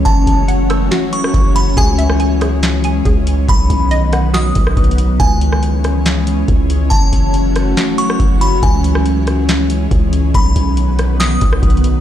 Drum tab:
HH |x-----x-----x-----x-----x-----x-----x-----x-----|x-----x-----x-----x-----x-----x-----x-----x-----|x-----x-----x-----x-----x-----x-----x-x-x-x-----|x-----x-----x-----x-----x-----x-----x-----x-----|
SD |------------------r-----o--------r--------------|---------r--------r-----o-----------------------|------------------r-----o--------r--------------|---------r--------r-----o-----------------------|
BD |o-----------------------------------o-----------|o-----------------------------------o-----------|o-----------------------------o-----o-----------|o-----------------------------------o-----------|

HH |x-----x-----x-----x-----x-----x-----x-----x-----|x-----x-----x-----x-----x-----x-----x-----x-----|x-----x-----x-----x-----x-----x-----x-x-x-x-----|
SD |------------------r-----o--------r--------------|---------r--------r-----o-----------------------|------------------r-----o--------r--------------|
BD |o-----------------------------------o-----------|o-----------------------------------o-----------|o-----------------------------o-----o-----------|